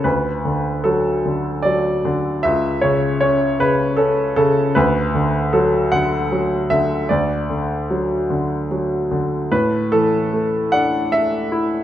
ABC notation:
X:1
M:6/8
L:1/8
Q:3/8=50
K:D
V:1 name="Grand piano"
B2 A2 d2 | e c c B A A | B2 A f2 e | d4 z2 |
B A2 f e2 |]
V:2 name="Grand piano" clef=bass
D,, D, F, D, F, D, | C,, C, C C, C C, | D,, D, F, D, F, D, | D,, D, F, D, F, D, |
A,, E, A, D2 E |]